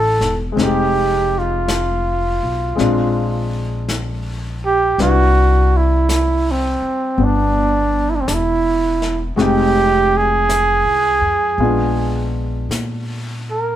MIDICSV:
0, 0, Header, 1, 6, 480
1, 0, Start_track
1, 0, Tempo, 1098901
1, 254, Time_signature, 4, 2, 24, 8
1, 4093, Tempo, 1113173
1, 5985, End_track
2, 0, Start_track
2, 0, Title_t, "Trumpet"
2, 0, Program_c, 0, 56
2, 0, Note_on_c, 0, 69, 76
2, 189, Note_off_c, 0, 69, 0
2, 275, Note_on_c, 0, 67, 77
2, 604, Note_on_c, 0, 65, 64
2, 610, Note_off_c, 0, 67, 0
2, 1553, Note_off_c, 0, 65, 0
2, 2033, Note_on_c, 0, 67, 72
2, 2172, Note_off_c, 0, 67, 0
2, 2193, Note_on_c, 0, 66, 82
2, 2518, Note_on_c, 0, 64, 69
2, 2525, Note_off_c, 0, 66, 0
2, 2844, Note_on_c, 0, 60, 65
2, 2851, Note_off_c, 0, 64, 0
2, 3162, Note_on_c, 0, 62, 69
2, 3169, Note_off_c, 0, 60, 0
2, 3537, Note_on_c, 0, 64, 59
2, 3543, Note_off_c, 0, 62, 0
2, 3561, Note_on_c, 0, 62, 57
2, 3568, Note_off_c, 0, 64, 0
2, 3584, Note_on_c, 0, 60, 54
2, 3591, Note_off_c, 0, 62, 0
2, 3615, Note_on_c, 0, 62, 55
2, 3621, Note_off_c, 0, 60, 0
2, 3640, Note_on_c, 0, 64, 74
2, 3646, Note_off_c, 0, 62, 0
2, 4033, Note_off_c, 0, 64, 0
2, 4093, Note_on_c, 0, 66, 57
2, 4112, Note_on_c, 0, 67, 87
2, 4119, Note_off_c, 0, 66, 0
2, 4436, Note_on_c, 0, 68, 86
2, 4443, Note_off_c, 0, 67, 0
2, 5387, Note_off_c, 0, 68, 0
2, 5875, Note_on_c, 0, 70, 60
2, 5985, Note_off_c, 0, 70, 0
2, 5985, End_track
3, 0, Start_track
3, 0, Title_t, "Grand piano"
3, 0, Program_c, 1, 0
3, 0, Control_c, 1, 64, 127
3, 0, Note_on_c, 1, 58, 40
3, 0, Note_on_c, 1, 62, 35
3, 0, Note_on_c, 1, 65, 41
3, 0, Note_on_c, 1, 67, 35
3, 228, Note_on_c, 1, 56, 44
3, 243, Note_off_c, 1, 58, 0
3, 243, Note_on_c, 1, 60, 44
3, 254, Note_off_c, 1, 62, 0
3, 259, Note_off_c, 1, 65, 0
3, 260, Control_c, 1, 64, 0
3, 260, Note_on_c, 1, 63, 42
3, 261, Note_off_c, 1, 67, 0
3, 276, Note_on_c, 1, 67, 51
3, 347, Control_c, 1, 64, 127
3, 1197, Note_off_c, 1, 56, 0
3, 1202, Note_off_c, 1, 60, 0
3, 1203, Note_on_c, 1, 56, 45
3, 1208, Note_on_c, 1, 60, 43
3, 1216, Note_on_c, 1, 62, 44
3, 1219, Note_off_c, 1, 63, 0
3, 1221, Control_c, 1, 64, 0
3, 1225, Note_on_c, 1, 65, 47
3, 1227, Note_off_c, 1, 67, 0
3, 1287, Control_c, 1, 64, 127
3, 2170, Note_off_c, 1, 56, 0
3, 2173, Note_off_c, 1, 60, 0
3, 2177, Note_off_c, 1, 62, 0
3, 2181, Note_off_c, 1, 65, 0
3, 2182, Note_on_c, 1, 55, 46
3, 2183, Control_c, 1, 64, 0
3, 2184, Note_on_c, 1, 62, 41
3, 2185, Note_on_c, 1, 71, 39
3, 2188, Note_on_c, 1, 64, 47
3, 2271, Control_c, 1, 64, 127
3, 3136, Note_on_c, 1, 59, 33
3, 3142, Note_off_c, 1, 62, 0
3, 3149, Note_on_c, 1, 62, 37
3, 4090, Note_on_c, 1, 56, 48
3, 4095, Note_on_c, 1, 60, 41
3, 4097, Note_off_c, 1, 59, 0
3, 4100, Note_off_c, 1, 55, 0
3, 4101, Note_off_c, 1, 71, 0
3, 4101, Note_on_c, 1, 63, 39
3, 4103, Note_off_c, 1, 62, 0
3, 4103, Note_off_c, 1, 64, 0
3, 4103, Control_c, 1, 64, 0
3, 4110, Note_on_c, 1, 79, 48
3, 4173, Control_c, 1, 64, 127
3, 5046, Note_off_c, 1, 56, 0
3, 5052, Note_off_c, 1, 60, 0
3, 5053, Note_on_c, 1, 56, 39
3, 5055, Note_off_c, 1, 63, 0
3, 5056, Note_on_c, 1, 65, 42
3, 5057, Note_on_c, 1, 59, 34
3, 5058, Control_c, 1, 64, 0
3, 5059, Note_on_c, 1, 62, 33
3, 5060, Note_off_c, 1, 79, 0
3, 5122, Control_c, 1, 64, 127
3, 5985, Note_off_c, 1, 56, 0
3, 5985, Note_off_c, 1, 59, 0
3, 5985, Note_off_c, 1, 62, 0
3, 5985, Note_off_c, 1, 65, 0
3, 5985, End_track
4, 0, Start_track
4, 0, Title_t, "Upright bass"
4, 0, Program_c, 2, 32
4, 0, Note_on_c, 2, 33, 44
4, 81, Note_off_c, 2, 33, 0
4, 88, Note_on_c, 2, 28, 50
4, 240, Note_off_c, 2, 28, 0
4, 249, Note_on_c, 2, 29, 66
4, 1040, Note_off_c, 2, 29, 0
4, 1060, Note_on_c, 2, 35, 56
4, 1205, Note_off_c, 2, 35, 0
4, 1215, Note_on_c, 2, 34, 67
4, 2159, Note_off_c, 2, 34, 0
4, 2176, Note_on_c, 2, 36, 66
4, 2963, Note_off_c, 2, 36, 0
4, 3135, Note_on_c, 2, 31, 68
4, 3598, Note_off_c, 2, 31, 0
4, 3616, Note_on_c, 2, 28, 56
4, 4080, Note_off_c, 2, 28, 0
4, 4094, Note_on_c, 2, 29, 69
4, 4715, Note_off_c, 2, 29, 0
4, 4729, Note_on_c, 2, 36, 46
4, 4880, Note_off_c, 2, 36, 0
4, 4887, Note_on_c, 2, 41, 54
4, 5039, Note_off_c, 2, 41, 0
4, 5046, Note_on_c, 2, 34, 66
4, 5514, Note_off_c, 2, 34, 0
4, 5525, Note_on_c, 2, 46, 54
4, 5985, Note_off_c, 2, 46, 0
4, 5985, End_track
5, 0, Start_track
5, 0, Title_t, "Muted upright bass strokes"
5, 2978, Note_on_c, 9, 29, 32
5, 3022, Note_off_c, 9, 29, 0
5, 5985, End_track
6, 0, Start_track
6, 0, Title_t, "Drums"
6, 92, Note_on_c, 9, 38, 23
6, 136, Note_off_c, 9, 38, 0
6, 255, Note_on_c, 9, 25, 26
6, 255, Note_on_c, 9, 38, 21
6, 298, Note_off_c, 9, 38, 0
6, 735, Note_off_c, 9, 25, 0
6, 735, Note_on_c, 9, 25, 27
6, 735, Note_on_c, 9, 38, 35
6, 735, Note_on_c, 9, 44, 42
6, 779, Note_off_c, 9, 38, 0
6, 779, Note_off_c, 9, 44, 0
6, 1218, Note_off_c, 9, 25, 0
6, 1218, Note_on_c, 9, 25, 27
6, 1218, Note_on_c, 9, 38, 23
6, 1261, Note_off_c, 9, 38, 0
6, 1697, Note_off_c, 9, 25, 0
6, 1697, Note_on_c, 9, 25, 28
6, 1697, Note_on_c, 9, 38, 33
6, 1697, Note_on_c, 9, 44, 40
6, 1741, Note_off_c, 9, 38, 0
6, 1741, Note_off_c, 9, 44, 0
6, 2179, Note_off_c, 9, 25, 0
6, 2179, Note_on_c, 9, 25, 30
6, 2179, Note_on_c, 9, 38, 25
6, 2223, Note_off_c, 9, 38, 0
6, 2661, Note_off_c, 9, 25, 0
6, 2661, Note_on_c, 9, 25, 33
6, 2661, Note_on_c, 9, 38, 37
6, 2661, Note_on_c, 9, 44, 39
6, 2704, Note_off_c, 9, 38, 0
6, 2704, Note_off_c, 9, 44, 0
6, 3136, Note_off_c, 9, 25, 0
6, 3136, Note_on_c, 9, 25, 27
6, 3616, Note_off_c, 9, 25, 0
6, 3616, Note_on_c, 9, 25, 24
6, 3616, Note_on_c, 9, 38, 33
6, 3616, Note_on_c, 9, 44, 50
6, 3660, Note_off_c, 9, 38, 0
6, 3660, Note_off_c, 9, 44, 0
6, 3940, Note_on_c, 9, 38, 22
6, 3983, Note_off_c, 9, 38, 0
6, 4100, Note_off_c, 9, 25, 0
6, 4100, Note_on_c, 9, 25, 31
6, 4100, Note_on_c, 9, 38, 24
6, 4143, Note_off_c, 9, 38, 0
6, 4577, Note_off_c, 9, 25, 0
6, 4577, Note_on_c, 9, 25, 27
6, 4577, Note_on_c, 9, 38, 36
6, 4577, Note_on_c, 9, 44, 48
6, 4621, Note_off_c, 9, 38, 0
6, 4621, Note_off_c, 9, 44, 0
6, 5054, Note_off_c, 9, 25, 0
6, 5054, Note_on_c, 9, 25, 25
6, 5532, Note_off_c, 9, 25, 0
6, 5532, Note_on_c, 9, 25, 25
6, 5532, Note_on_c, 9, 38, 33
6, 5532, Note_on_c, 9, 44, 37
6, 5575, Note_off_c, 9, 38, 0
6, 5575, Note_off_c, 9, 44, 0
6, 5985, Note_off_c, 9, 25, 0
6, 5985, End_track
0, 0, End_of_file